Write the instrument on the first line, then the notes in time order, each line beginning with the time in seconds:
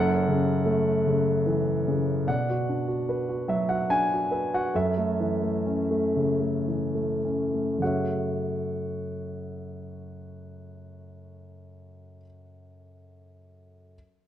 grand piano
Already playing: F#1 F#2 A4 F#5
0.28 C#3
0.65 A3
1.07 C#3
1.46 E3
1.88 C#3
2.27 B2 D5 F#5
2.50 F#4
2.69 D4
2.88 F#4
3.09 B4
3.29 F#4
3.48 F#3 E5
3.69 F#4 F#5
3.90 D4 G#5
4.13 F#4
4.31 B4
4.54 F#4 F#5
4.74 F#2 A4 E5
4.98 A3
5.20 E3
5.42 A3
5.66 C#4
5.91 A3
6.16 C#3
6.41 A3
6.68 E3
6.95 A3
7.25 C#4
7.54 A3
7.78 F#2 C#3 A3
7.82 F#4 C#5 F#5
7.87 E5